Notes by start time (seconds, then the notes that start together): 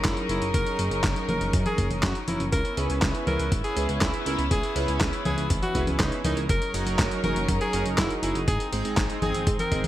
Already playing: F#3 C#4 D#4 G#4 A#4
0.05 F#1 E4, kick, snare, clap, closed hi-hat
0.17 closed hi-hat
0.29 F#1 E4, closed hi-hat
0.42 F#1, closed hi-hat
0.54 F#1 A#4, kick, closed hi-hat
0.67 closed hi-hat
0.79 F#1, closed hi-hat
0.91 F#1, closed hi-hat
1.04 F#1, kick, snare, clap, closed hi-hat
1.16 closed hi-hat
1.28 F#1 A#4, closed hi-hat, high conga
1.41 F#1, closed hi-hat
1.53 F#2, kick, closed hi-hat
1.66 G#4, closed hi-hat, high conga
1.78 F#1, kick, closed hi-hat
1.91 F#1, closed hi-hat, high conga
2.03 F#2 F#4, kick, snare, clap, closed hi-hat
2.15 closed hi-hat
2.28 F#1 E4, closed hi-hat, high conga
2.40 F#1, closed hi-hat
2.52 C#2 B3 E4 A#4, kick, closed hi-hat
2.65 closed hi-hat
2.77 C#2 C#4 E4 G#4 B4, closed hi-hat
2.90 C#2, closed hi-hat
3.02 C#2, kick, snare, clap, closed hi-hat
3.15 closed hi-hat
3.27 C#2 C#4 E4 G#4 A#4 B4, closed hi-hat, high conga
3.39 C#2, closed hi-hat
3.52 G#1, kick, closed hi-hat
3.64 G#4, closed hi-hat
3.76 C#2 C#4 E4 G#4 B4, closed hi-hat
3.89 C#2, closed hi-hat
4.01 C#2 E4, kick, snare, clap, closed hi-hat
4.14 closed hi-hat
4.26 C#2 C#4 E4 G#4 A#4, closed hi-hat
4.39 C#2, closed hi-hat
4.51 C#2 G#4, kick, closed hi-hat
4.63 closed hi-hat
4.76 C#2 C#4 E4 G#4 B4, closed hi-hat
4.88 C#2, closed hi-hat
5.01 C#2, kick, snare, clap, closed hi-hat
5.13 closed hi-hat
5.25 C#2 C#4 E4 G#4 B4, closed hi-hat, high conga
5.38 C#2, closed hi-hat
5.50 G#1, kick, closed hi-hat
5.63 F#4, closed hi-hat, high conga
5.75 C#2 C#4 E4 G#4 B4, kick, closed hi-hat
5.87 C#2, closed hi-hat, high conga
6.00 C#2 D#4, kick, snare, clap, closed hi-hat
6.12 closed hi-hat
6.24 C#2 C#4 D#4 E4 G#4 A#4, closed hi-hat, high conga
6.37 C#2, closed hi-hat
6.49 F#1 F#3 C#4 D#4 G#4 A#4, kick, closed hi-hat
6.62 closed hi-hat
6.74 F#1 C#4 D#4 F#4 A#4, closed hi-hat
6.86 F#1, closed hi-hat
6.99 F#1, kick, snare, clap, closed hi-hat
7.11 closed hi-hat
7.24 F#1 C#4 D#4 F#4 A#4, closed hi-hat, high conga
7.36 F#1, closed hi-hat
7.49 F#2, kick, closed hi-hat
7.61 G#4, closed hi-hat
7.73 F#1 C#4 D#4 F#4 A#4, closed hi-hat
7.86 F#1, closed hi-hat
7.98 F#1 E4, kick, snare, clap, closed hi-hat
8.11 closed hi-hat
8.23 F#1 C#4 D#4 E4 F#4 G#4, closed hi-hat
8.35 F#1, closed hi-hat
8.47 G#1 C4 G#4, kick, closed hi-hat
8.60 closed hi-hat
8.72 G#1 G#3 C4 D#4 G#4, closed hi-hat
8.85 G#1, closed hi-hat
8.97 G#1, kick, snare, clap, closed hi-hat
9.10 closed hi-hat
9.22 G#1 G#3 C4 D#4 G#4, closed hi-hat, high conga
9.34 G#1, closed hi-hat
9.47 G#2, kick, closed hi-hat
9.59 A#4, closed hi-hat, high conga
9.72 G#1 G#3 C4 D#4 G#4, kick, closed hi-hat
9.84 G#1, closed hi-hat, high conga